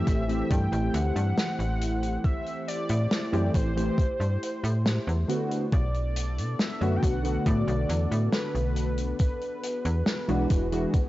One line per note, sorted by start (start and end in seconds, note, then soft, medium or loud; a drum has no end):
0.00 0.23 E3 medium
0.00 0.23 A3 medium
0.00 5.25 A3 medium
0.00 0.24 C4 medium
0.00 5.25 E4 medium
0.00 0.24 G4 medium
0.00 5.25 G4 medium
0.00 5.25 C5 medium
0.00 0.52 E5 loud
0.07 0.43 A1 medium
0.07 kick loud
0.07 closed hi-hat medium
0.27 3.27 E3 medium
0.27 3.28 A3 medium
0.27 3.28 C4 medium
0.27 3.29 G4 medium
0.27 closed hi-hat medium
0.50 0.68 G2 loud
0.50 0.95 G5 loud
0.50 kick loud
0.50 closed hi-hat medium
0.72 0.90 A1 loud
0.72 closed hi-hat soft
0.94 1.12 D2 loud
0.94 2.24 F#5 loud
0.94 closed hi-hat medium
1.15 1.33 G2 loud
1.15 closed hi-hat medium
1.37 snare loud
1.37 closed hi-hat medium
1.59 2.18 A1 medium
1.59 closed hi-hat soft
1.81 closed hi-hat medium
2.03 closed hi-hat medium
2.24 2.65 E5 loud
2.24 kick loud
2.24 closed hi-hat medium
2.46 closed hi-hat soft
2.68 3.51 D5 loud
2.68 closed hi-hat medium
2.89 3.07 A2 medium
2.89 closed hi-hat medium
3.11 snare loud
3.11 closed hi-hat medium
3.32 3.51 F#2 medium
3.32 3.71 E3 medium
3.32 3.71 A3 medium
3.32 3.71 C4 medium
3.32 3.72 G4 medium
3.32 closed hi-hat soft
3.55 3.90 A1 medium
3.55 5.25 C5 medium
3.55 kick loud
3.55 closed hi-hat medium
3.76 3.99 E3 medium
3.76 3.99 A3 medium
3.76 3.99 C4 medium
3.76 3.99 G4 medium
3.76 closed hi-hat medium
3.98 kick loud
3.98 closed hi-hat medium
4.20 4.38 G2 medium
4.20 closed hi-hat soft
4.43 closed hi-hat medium
4.63 4.99 A2 loud
4.63 closed hi-hat medium
4.86 snare loud
4.86 closed hi-hat medium
5.07 5.25 E2 loud
5.07 closed hi-hat soft
5.27 5.64 D3 medium
5.27 5.64 A3 medium
5.27 5.65 B3 medium
5.27 11.09 B3 medium
5.27 11.09 D4 medium
5.27 5.65 F#4 medium
5.27 9.16 A4 medium
5.27 closed hi-hat medium
5.51 closed hi-hat medium
5.72 6.39 B1 loud
5.72 6.61 D5 loud
5.72 kick loud
5.72 closed hi-hat medium
5.94 closed hi-hat soft
6.16 closed hi-hat loud
6.37 6.55 B2 loud
6.37 closed hi-hat medium
6.59 6.98 E5 loud
6.59 snare loud
6.59 closed hi-hat medium
6.80 6.99 F#2 medium
6.80 7.19 D3 medium
6.80 7.19 A3 medium
6.80 7.19 B3 medium
6.80 7.20 F#4 medium
6.80 closed hi-hat soft
6.96 7.04 G5 medium
7.03 7.38 B1 medium
7.03 7.45 F#5 loud
7.03 kick loud
7.03 closed hi-hat loud
7.22 9.16 D3 medium
7.22 9.17 A3 medium
7.22 9.17 B3 medium
7.22 9.18 F#4 medium
7.22 closed hi-hat medium
7.46 7.64 A2 loud
7.46 8.29 D5 loud
7.46 kick loud
7.46 closed hi-hat medium
7.68 7.85 B1 loud
7.68 closed hi-hat soft
7.89 8.07 E2 loud
7.89 closed hi-hat loud
8.11 8.29 A2 medium
8.11 closed hi-hat medium
8.33 9.16 B4 loud
8.33 snare loud
8.33 closed hi-hat medium
8.55 9.14 B1 medium
8.55 closed hi-hat soft
8.76 closed hi-hat medium
8.98 closed hi-hat medium
9.19 11.09 E3 medium
9.19 11.09 F#4 medium
9.19 11.09 G#4 medium
9.19 11.09 B4 medium
9.19 kick loud
9.19 closed hi-hat medium
9.41 closed hi-hat soft
9.63 closed hi-hat loud
9.85 10.03 E2 loud
9.85 closed hi-hat medium
10.06 snare loud
10.06 closed hi-hat medium
10.28 10.46 B1 medium
10.28 10.67 E3 medium
10.28 10.67 G#3 medium
10.28 10.67 D4 medium
10.28 10.67 F#4 medium
10.28 closed hi-hat soft
10.50 10.86 E1 medium
10.50 kick loud
10.50 closed hi-hat loud
10.71 10.94 E3 medium
10.71 10.94 G#3 medium
10.71 10.95 D4 medium
10.71 10.95 F#4 medium
10.71 closed hi-hat medium
10.93 kick loud
10.93 closed hi-hat medium